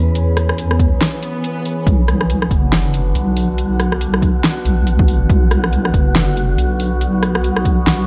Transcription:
0.00 1.00 E2 loud
0.00 1.83 E3 medium
0.00 1.88 B3 medium
0.00 1.83 C#4 medium
0.00 1.83 G#4 medium
0.00 1.88 B4 medium
0.15 closed hi-hat medium
0.37 cross-stick medium
0.37 closed hi-hat medium
0.49 cross-stick medium
0.58 closed hi-hat medium
0.71 cross-stick medium
0.80 kick medium
0.80 closed hi-hat medium
1.01 snare loud
1.01 closed hi-hat medium
1.01 swell medium
1.23 closed hi-hat medium
1.44 closed hi-hat medium
1.66 open hi-hat medium
1.87 2.50 B1 medium
1.87 8.07 D3 medium
1.87 8.07 F#3 medium
1.87 8.07 B3 medium
1.87 8.07 F#4 medium
1.87 kick loud
1.87 closed hi-hat medium
2.08 cross-stick medium
2.08 closed hi-hat medium
2.21 cross-stick medium
2.30 closed hi-hat medium
2.42 cross-stick medium
2.51 3.14 F#1 loud
2.51 kick medium
2.51 closed hi-hat medium
2.73 snare loud
2.73 closed hi-hat medium
2.94 closed hi-hat medium
3.15 4.42 B1 medium
3.15 closed hi-hat medium
3.37 open hi-hat medium
3.58 closed hi-hat medium
3.80 cross-stick medium
3.80 closed hi-hat medium
3.92 cross-stick medium
4.01 closed hi-hat medium
4.14 cross-stick medium
4.22 kick medium
4.22 closed hi-hat medium
4.44 snare loud
4.44 closed hi-hat medium
4.65 5.28 B1 loud
4.65 closed hi-hat medium
4.87 closed hi-hat medium
4.99 kick loud
5.08 open hi-hat medium
5.30 5.92 B1 loud
5.30 kick loud
5.30 closed hi-hat medium
5.51 cross-stick medium
5.51 closed hi-hat soft
5.64 cross-stick medium
5.73 closed hi-hat medium
5.85 cross-stick medium
5.94 6.57 F#1 loud
5.94 kick medium
5.94 closed hi-hat soft
6.15 snare loud
6.15 closed hi-hat medium
6.37 closed hi-hat medium
6.58 7.85 B1 loud
6.58 closed hi-hat medium
6.80 open hi-hat medium
7.01 closed hi-hat medium
7.23 cross-stick medium
7.23 closed hi-hat soft
7.35 cross-stick medium
7.44 closed hi-hat medium
7.57 cross-stick medium
7.65 kick medium
7.65 closed hi-hat soft
7.87 8.07 B1 loud
7.87 snare loud
7.87 closed hi-hat medium

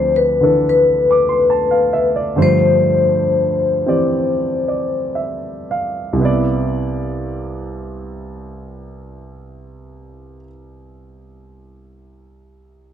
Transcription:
0.00 2.36 D2 soft
0.00 0.39 D3 soft
0.00 2.36 F3 soft
0.00 2.37 C4 soft
0.00 0.16 C5 medium
0.00 2.14 D5 soft
0.16 0.68 B4 medium
0.41 2.35 D3 soft
0.41 2.36 E3 soft
0.41 2.37 D4 soft
0.41 2.37 A4 soft
0.69 2.06 B4 medium
1.11 1.36 D6 soft
1.29 1.59 C6 soft
1.50 1.91 A5 soft
1.71 2.09 F5 soft
1.93 2.20 E5 soft
2.16 2.46 D5 soft
2.36 6.19 G2 soft
2.36 6.20 D3 soft
2.36 6.20 F3 soft
2.36 6.20 A3 soft
2.36 6.20 C5 soft
2.42 5.14 C5 medium
3.86 6.19 E3 soft
3.86 6.19 C4 soft
3.86 6.20 G4 soft
3.86 4.67 D5 soft
4.68 5.38 D5 soft
5.15 5.99 E5 soft
5.71 6.45 F5 soft
6.13 10.37 C2 medium
6.13 10.40 C3 soft
6.20 10.43 B3 soft
6.20 10.46 E4 soft
6.25 10.49 D5 medium

